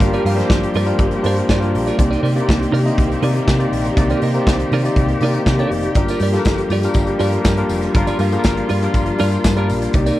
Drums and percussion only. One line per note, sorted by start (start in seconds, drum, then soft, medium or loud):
0.00 kick loud
0.00 closed hi-hat medium
0.13 closed hi-hat soft
0.26 open hi-hat medium
0.38 snare soft
0.38 closed hi-hat soft
0.50 kick loud
0.50 snare loud
0.63 closed hi-hat medium
0.74 open hi-hat medium
0.87 closed hi-hat soft
0.99 kick loud
0.99 closed hi-hat soft
1.11 closed hi-hat soft
1.24 open hi-hat medium
1.37 closed hi-hat soft
1.49 kick loud
1.49 snare loud
1.62 closed hi-hat soft
1.75 open hi-hat medium
1.87 closed hi-hat medium
1.99 kick loud
1.99 closed hi-hat medium
2.13 closed hi-hat soft
2.25 open hi-hat medium
2.38 closed hi-hat soft
2.49 kick loud
2.49 snare loud
2.63 closed hi-hat medium
2.74 open hi-hat medium
2.87 closed hi-hat soft
2.98 kick loud
2.98 closed hi-hat soft
3.12 closed hi-hat soft
3.23 open hi-hat medium
3.36 closed hi-hat soft
3.48 kick loud
3.48 snare loud
3.60 closed hi-hat soft
3.73 open hi-hat medium
3.85 closed hi-hat soft
3.97 kick loud
3.97 closed hi-hat medium
4.10 closed hi-hat soft
4.22 open hi-hat medium
4.34 closed hi-hat soft
4.47 kick loud
4.47 snare loud
4.60 closed hi-hat medium
4.72 open hi-hat medium
4.85 closed hi-hat soft
4.96 kick loud
4.96 closed hi-hat soft
5.08 closed hi-hat soft
5.21 open hi-hat medium
5.34 closed hi-hat soft
5.46 kick loud
5.46 snare loud
5.59 closed hi-hat soft
5.71 open hi-hat medium
5.83 closed hi-hat medium
5.95 kick loud
5.95 closed hi-hat medium
6.08 closed hi-hat soft
6.08 tambourine medium
6.20 open hi-hat medium
6.20 tambourine soft
6.34 snare soft
6.34 closed hi-hat soft
6.45 kick loud
6.45 snare loud
6.45 tambourine medium
6.58 closed hi-hat medium
6.70 open hi-hat medium
6.70 tambourine soft
6.83 closed hi-hat soft
6.83 tambourine soft
6.94 kick loud
6.94 closed hi-hat soft
6.94 tambourine medium
7.07 closed hi-hat soft
7.19 open hi-hat medium
7.19 tambourine medium
7.32 closed hi-hat soft
7.45 kick loud
7.45 snare medium
7.45 tambourine loud
7.57 closed hi-hat soft
7.69 open hi-hat medium
7.69 tambourine medium
7.82 closed hi-hat medium
7.82 tambourine soft
7.94 kick loud
7.94 closed hi-hat medium
8.07 closed hi-hat soft
8.07 tambourine medium
8.19 open hi-hat medium
8.19 tambourine soft
8.32 closed hi-hat soft
8.32 tambourine soft
8.44 kick loud
8.44 snare loud
8.44 tambourine medium
8.57 closed hi-hat medium
8.69 open hi-hat medium
8.69 tambourine soft
8.82 closed hi-hat soft
8.82 tambourine soft
8.94 kick loud
8.94 closed hi-hat soft
8.94 tambourine medium
9.06 closed hi-hat soft
9.18 open hi-hat medium
9.18 tambourine medium
9.31 closed hi-hat soft
9.31 tambourine soft
9.44 kick medium
9.44 snare loud
9.44 tambourine loud
9.57 closed hi-hat soft
9.69 open hi-hat medium
9.69 tambourine medium
9.82 closed hi-hat medium
9.82 tambourine soft
9.93 kick loud
9.93 closed hi-hat medium
10.06 closed hi-hat soft
10.06 tambourine medium